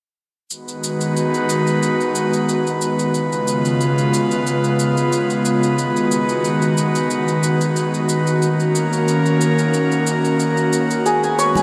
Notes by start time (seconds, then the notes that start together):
0.50 D#3 G#3 B3 F#4 B4, shaker
0.68 shaker
0.84 shaker
1.01 shaker
1.17 shaker
1.34 shaker
1.49 shaker
1.67 shaker
1.83 shaker
2.01 shaker
2.15 shaker
2.33 shaker
2.49 shaker
2.67 shaker
2.81 shaker
2.99 shaker
3.14 C#3 G#3 F4 B4, shaker
3.33 shaker
3.48 shaker
3.65 shaker
3.81 shaker
3.98 shaker
4.14 shaker
4.31 shaker
4.47 shaker
4.64 shaker
4.79 shaker
4.97 shaker
5.13 shaker
5.30 shaker
5.45 shaker
5.63 shaker
5.78 D#3 F#4, shaker
5.96 shaker
6.12 shaker
6.29 shaker
6.45 shaker
6.62 shaker
6.78 shaker
6.95 shaker
7.11 shaker
7.28 shaker
7.43 shaker
7.61 shaker
7.76 shaker
7.94 shaker
8.09 shaker
8.27 shaker
8.41 A#3 C#4 A#4, shaker
8.60 shaker
8.75 shaker
8.93 shaker
9.08 shaker
9.26 shaker
9.41 shaker
9.59 shaker
9.74 shaker
9.92 shaker
10.07 shaker
10.25 shaker
10.40 shaker
10.57 shaker
10.73 shaker
10.91 shaker
11.05 D#3 G#3 B3 G#4 B4, shaker
11.24 G#5, shaker
11.39 C#5, shaker
11.56 G#5, muted conga, shaker